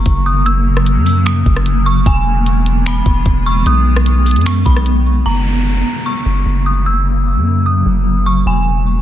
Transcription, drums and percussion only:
0.06 kick, closed hi-hat
0.46 closed hi-hat
0.77 cross-stick
0.86 closed hi-hat
1.06 open hi-hat
1.26 finger snap, closed hi-hat
1.46 kick, closed hi-hat
1.56 cross-stick
1.66 closed hi-hat
2.06 kick, closed hi-hat
2.46 closed hi-hat
2.66 closed hi-hat
2.86 finger snap, closed hi-hat
3.06 kick, closed hi-hat
3.26 kick, closed hi-hat
3.66 closed hi-hat
3.96 cross-stick
4.06 closed hi-hat
4.26 closed hi-hat, open hi-hat
4.31 closed hi-hat
4.36 closed hi-hat
4.41 closed hi-hat
4.46 finger snap, closed hi-hat
4.66 kick, closed hi-hat
4.76 cross-stick
4.86 closed hi-hat

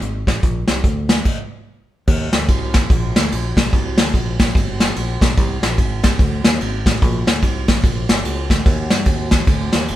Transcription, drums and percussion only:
0.02 closed hi-hat
0.27 kick, snare, closed hi-hat
0.43 kick, closed hi-hat
0.68 snare, closed hi-hat
0.84 kick, closed hi-hat
1.09 snare, closed hi-hat
1.25 kick, crash
2.07 kick, crash
2.33 snare, ride
2.48 kick, ride
2.73 kick, snare, ride
2.90 kick, ride
3.16 snare, ride
3.32 ride
3.57 kick, snare, ride
3.73 kick, ride
3.98 snare, ride
4.14 kick, ride
4.39 kick, snare, ride
4.55 kick, ride
4.80 snare, ride
4.96 ride
5.21 kick, snare, ride
5.37 kick, ride
5.63 snare, ride
5.78 kick, ride
6.03 kick, snare, ride
6.19 kick, ride
6.44 snare, ride
6.61 ride
6.86 kick, snare, ride
7.02 kick, ride
7.27 snare, ride
7.43 kick, ride
7.68 kick, snare, ride
7.84 kick, ride
8.09 snare, ride
8.25 ride
8.50 kick, snare, ride
8.66 kick, ride
8.90 snare, ride
9.06 kick, ride
9.31 kick, snare, ride
9.47 kick, ride
9.72 snare, ride
9.88 ride

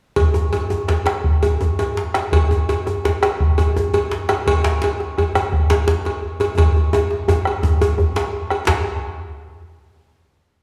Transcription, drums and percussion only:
0.16 bombo low, cowbell, djembe bass
0.34 djembe tone
0.53 cowbell, djembe tone
0.70 bombo rim, djembe slap, djembe tone
0.88 bombo rim, cowbell, djembe slap, djembe bass
1.06 bombo rim, cowbell, djembe slap
1.24 bombo rim, bombo low
1.43 cowbell, djembe tone
1.61 djembe tone, djembe bass
1.79 cowbell, djembe slap, djembe tone
1.97 djembe slap
2.14 bombo rim, cowbell, djembe slap
2.32 bombo low, cowbell, djembe bass
2.51 djembe tone
2.69 cowbell, djembe slap, djembe tone
2.86 bombo rim, djembe slap, djembe tone
3.04 bombo rim, cowbell, djembe slap, djembe bass
3.23 bombo rim, cowbell, djembe slap
3.40 bombo rim, bombo low
3.58 cowbell, djembe tone
3.76 djembe tone, djembe bass
3.94 cowbell, djembe slap, djembe tone
4.11 djembe slap
4.29 bombo rim, cowbell, djembe slap
4.47 bombo low, cowbell, djembe bass
4.64 djembe slap, djembe tone
4.82 cowbell, djembe slap
5.00 bombo rim, djembe slap
5.18 bombo rim, cowbell, djembe bass
5.35 bombo rim, cowbell, djembe tone
5.52 bombo rim, bombo low
5.70 cowbell, djembe slap, djembe tone
5.88 djembe slap, djembe bass
6.05 cowbell, djembe slap
6.40 cowbell, djembe slap, djembe tone
6.58 bombo low, cowbell, djembe slap, djembe tone, djembe bass
6.76 djembe tone
6.93 cowbell, djembe tone
7.11 djembe slap
7.28 bombo rim, cowbell, djembe tone, djembe bass
7.45 bombo rim, cowbell, djembe slap
7.63 bombo rim, bombo low, djembe tone
7.81 cowbell, djembe tone
7.98 bombo rim, djembe bass
8.16 cowbell, djembe slap
8.33 djembe slap
8.50 bombo rim, cowbell
8.67 bombo low, cowbell, djembe slap, djembe bass

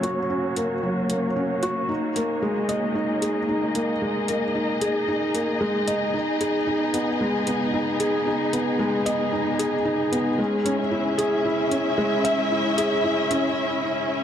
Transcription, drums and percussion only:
0.03 closed hi-hat
0.56 closed hi-hat
1.10 closed hi-hat
1.63 closed hi-hat
2.16 closed hi-hat
2.69 closed hi-hat
3.22 closed hi-hat
3.75 closed hi-hat
4.28 closed hi-hat
4.81 closed hi-hat
5.35 closed hi-hat
5.88 closed hi-hat
6.41 closed hi-hat
6.94 closed hi-hat
7.47 closed hi-hat
8.00 closed hi-hat
8.53 closed hi-hat
9.06 closed hi-hat
9.59 closed hi-hat
10.13 closed hi-hat
10.66 closed hi-hat
11.19 closed hi-hat
11.71 closed hi-hat
12.25 closed hi-hat
12.78 closed hi-hat
13.31 closed hi-hat

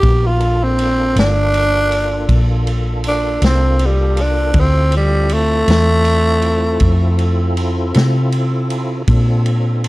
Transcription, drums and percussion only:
0.03 kick, ride
0.40 ride
0.78 ride
1.16 snare, ride
1.54 ride
1.92 ride
2.29 kick, ride
2.67 ride
3.04 ride
3.42 snare, ride
3.79 ride
4.17 ride
4.54 kick, ride
4.92 ride
5.29 ride
5.68 snare, ride
6.05 ride
6.42 ride
6.80 kick, ride
7.19 ride
7.57 ride
7.94 snare, ride
8.32 ride
8.70 ride
9.08 kick, ride
9.46 ride
9.84 ride

